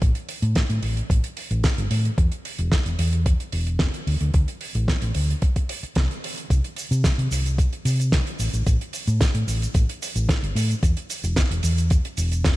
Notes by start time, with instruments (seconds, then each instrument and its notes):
0.02 fingered electric bass A1, kick, closed hi-hat
0.15 closed hi-hat
0.29 open hi-hat
0.42 fingered electric bass A2, closed hi-hat
0.55 kick, snare, closed hi-hat
0.69 fingered electric bass A2, closed hi-hat
0.82 fingered electric bass A1, open hi-hat
0.97 closed hi-hat
1.10 fingered electric bass A1, kick, closed hi-hat
1.24 closed hi-hat
1.37 open hi-hat
1.51 fingered electric bass A1, closed hi-hat
1.64 kick, snare, closed hi-hat
1.78 fingered electric bass G1, closed hi-hat
1.91 fingered electric bass A2, open hi-hat
2.05 closed hi-hat
2.18 fingered electric bass E2, kick, closed hi-hat
2.32 closed hi-hat
2.45 open hi-hat
2.58 fingered electric bass E1, closed hi-hat
2.72 kick, snare, closed hi-hat
2.86 fingered electric bass E1, closed hi-hat
2.99 fingered electric bass E2, open hi-hat
3.13 closed hi-hat
3.26 kick, closed hi-hat
3.40 closed hi-hat
3.52 fingered electric bass E1, open hi-hat
3.67 closed hi-hat
3.79 kick, snare, closed hi-hat
3.94 closed hi-hat
4.07 fingered electric bass D2, open hi-hat
4.20 fingered electric bass D2, closed hi-hat
4.34 fingered electric bass D2, kick, closed hi-hat
4.48 closed hi-hat
4.61 open hi-hat
4.75 fingered electric bass A1, closed hi-hat
4.88 kick, snare, closed hi-hat
5.02 fingered electric bass A1, closed hi-hat
5.15 fingered electric bass D2, open hi-hat
5.30 closed hi-hat
5.42 kick, closed hi-hat
5.56 kick, closed hi-hat
5.69 open hi-hat
5.83 muted fingered electric bass stroke, closed hi-hat
5.95 fingered electric bass C2, kick, snare, closed hi-hat
6.11 closed hi-hat
6.24 open hi-hat
6.37 closed hi-hat
6.50 fingered electric bass C2, kick, closed hi-hat, shaker
6.64 closed hi-hat
6.76 open hi-hat, shaker
6.91 fingered electric bass C3, closed hi-hat, shaker
7.04 kick, snare, closed hi-hat, shaker
7.18 fingered electric bass C3, closed hi-hat
7.31 fingered electric bass C2, open hi-hat, shaker
7.46 closed hi-hat, shaker
7.58 kick, closed hi-hat, shaker
7.73 closed hi-hat
7.85 fingered electric bass C3, open hi-hat, shaker
8.00 closed hi-hat, shaker
8.12 kick, snare, closed hi-hat, shaker
8.27 closed hi-hat
8.39 fingered electric bass A1, open hi-hat, shaker
8.53 fingered electric bass A1, closed hi-hat, shaker
8.66 fingered electric bass A1, kick, closed hi-hat, shaker
8.81 closed hi-hat
8.93 open hi-hat, shaker
9.07 fingered electric bass A2, closed hi-hat, shaker
9.21 kick, snare, closed hi-hat, shaker
9.34 fingered electric bass A2, closed hi-hat
9.47 fingered electric bass A1, open hi-hat, shaker
9.62 closed hi-hat, shaker
9.74 fingered electric bass A1, kick, closed hi-hat, shaker
9.89 closed hi-hat
10.02 open hi-hat, shaker
10.15 fingered electric bass A1, closed hi-hat, shaker
10.29 kick, snare, closed hi-hat, shaker
10.42 fingered electric bass G1, closed hi-hat
10.55 fingered electric bass A2, open hi-hat, shaker
10.70 closed hi-hat, shaker
10.83 fingered electric bass E2, kick, closed hi-hat, shaker
10.97 closed hi-hat
11.10 open hi-hat, shaker
11.23 fingered electric bass E1, closed hi-hat, shaker
11.36 kick, snare, closed hi-hat, shaker
11.50 fingered electric bass E1, closed hi-hat
11.63 fingered electric bass E2, open hi-hat, shaker
11.78 closed hi-hat, shaker
11.90 kick, closed hi-hat, shaker
12.05 closed hi-hat
12.17 fingered electric bass E1, open hi-hat, shaker
12.32 closed hi-hat, shaker
12.44 kick, snare, closed hi-hat, shaker